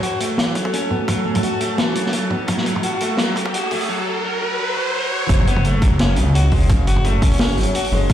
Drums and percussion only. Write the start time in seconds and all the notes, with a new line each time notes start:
0.03 closed hi-hat
0.20 closed hi-hat
0.38 snare, closed hi-hat
0.55 kick, closed hi-hat
0.65 kick
0.73 closed hi-hat
0.90 mid tom
1.08 kick, closed hi-hat, mid tom
1.35 closed hi-hat, mid tom
1.43 closed hi-hat
1.60 closed hi-hat
1.78 snare, closed hi-hat
1.95 closed hi-hat
2.06 snare
2.13 closed hi-hat
2.30 kick, mid tom
2.48 kick, closed hi-hat, mid tom
2.57 snare
2.66 closed hi-hat
2.76 mid tom
2.83 closed hi-hat
3.00 closed hi-hat
3.17 snare, closed hi-hat
3.36 kick, closed hi-hat
3.46 kick
3.54 closed hi-hat
3.71 mid tom, open hi-hat
3.81 open hi-hat
5.29 kick, closed hi-hat
5.39 mid tom
5.47 closed hi-hat
5.56 mid tom
5.64 closed hi-hat
5.82 kick, closed hi-hat
5.99 snare, closed hi-hat
6.16 closed hi-hat
6.35 closed hi-hat
6.51 kick, mid tom, open hi-hat
6.60 open hi-hat
6.69 kick, closed hi-hat, mid tom
6.87 closed hi-hat
6.96 mid tom
7.04 closed hi-hat
7.22 kick, closed hi-hat
7.31 open hi-hat
7.39 snare, open hi-hat
7.57 closed hi-hat
7.60 closed hi-hat
7.63 closed hi-hat
7.75 closed hi-hat
7.84 open hi-hat
7.92 mid tom
8.10 kick, closed hi-hat